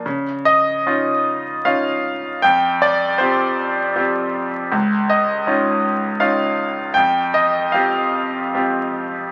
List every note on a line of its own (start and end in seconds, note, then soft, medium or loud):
0.06 2.40 C#3 soft
0.45 1.69 D#5 medium
0.86 1.64 C#4 soft
0.86 1.64 D#4 soft
0.86 1.64 F4 soft
1.65 2.41 C#4 soft
1.65 2.42 D#4 soft
1.65 2.42 F4 soft
1.65 2.46 F5 medium
2.42 4.69 F2 medium
2.42 2.79 G5 medium
2.82 3.21 D5 medium
3.18 3.94 C4 soft
3.18 3.94 F4 soft
3.18 3.94 G4 soft
3.18 4.29 C5 medium
3.96 4.70 C4 soft
3.96 4.70 F4 soft
3.96 4.71 G4 soft
4.72 6.93 C#2 medium
5.10 6.24 D#5 medium
5.47 6.19 C#4 soft
5.47 6.19 D#4 soft
5.47 6.19 F4 soft
6.20 6.94 C#4 soft
6.20 6.94 D#4 soft
6.20 6.95 F4 soft
6.20 6.99 F5 medium
6.94 9.32 F2 medium
6.94 7.36 G5 medium
7.34 7.75 D#5 medium
7.72 8.52 C4 soft
7.72 8.52 F4 soft
7.72 8.52 G4 soft
7.72 8.90 F5 medium
8.54 9.32 C4 soft
8.54 9.32 F4 soft
8.54 9.32 G4 soft